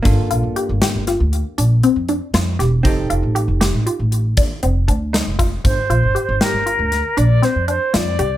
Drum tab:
HH |xxxxxxxxxxx|xxxxxxxxxxx|xxxxxxxxxxx|
SD |---oo----oo|---o-----o-|---o-o-o-o-|
BD |o----------|o-----o-o-o|o----------|